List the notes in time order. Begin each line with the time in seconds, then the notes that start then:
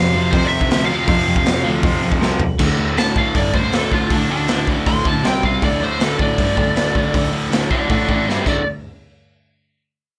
Already playing: F2 C3 F3 F5
0.13 F2 C3 F3
0.17 F2
0.31 F2 C3 F3 C5, kick, open hi-hat
0.45 D5 E5
0.51 F2 C3 F3
0.61 kick
0.69 D2 F2 C3 F3, snare, open hi-hat
0.86 F2 F5
0.90 C3 F3
1.08 F2, kick, open hi-hat
1.27 F2
1.36 kick
1.46 F2, snare, open hi-hat
1.63 D2 F2 C3 F3
1.83 F2 C3 F3, kick, open hi-hat
2.02 F2 C3 F3
2.12 kick
2.20 C2 F2 C3 F3, snare
2.40 F2, floor tom
2.59 D2 A2 D3, kick, crash
2.78 D2 A2 D3
2.97 D2 A2 D3 A5, snare, open hi-hat
3.16 D2 A2 D3 F5, kick
3.35 D2 G2 A2 D3 D5, kick, open hi-hat
3.54 D2 A2 D3 C5, kick
3.72 D2 A2 D3 A4, snare, open hi-hat
3.91 D2 A2 D3 F4, kick
4.10 D2 A2 D3 D4, kick, open hi-hat
4.30 D2 A2 D3 D4
4.48 D2 A2 D3, snare, open hi-hat
4.67 D2 A2 D3, kick
4.86 D2 A2 D3 C6, kick, open hi-hat
5.05 D2 A2 D3 A5, kick
5.24 C2 C3 G3 C4 G5, snare, open hi-hat
5.43 C2 C3 G3 C4 F5, kick
5.62 D2 A2 D3 D5, kick, open hi-hat
5.80 D2 A2 D3 C5
6.00 D2 A2 D3 A4, snare, open hi-hat
6.19 D2 A2 D3 D5, kick
6.38 D2 G2 A2 D3, kick, open hi-hat
6.57 D2 A2 D3, kick
6.75 D2 A2 D3, snare, open hi-hat
6.95 D2 A2 D3, kick
7.14 D2 A2 D3, kick, open hi-hat
7.33 D2 A2 D3
7.51 D2 A2 D3, snare, open hi-hat
7.70 D2 A2 D3 D5 F#5, kick
7.89 A2 E3 A3 D5 F#5, kick, open hi-hat
8.08 A2 E3 A3 D5 F#5, kick
8.26 G2 D3 G3 C5 E5, snare
8.44 D2 A2 D3 D5, kick, crash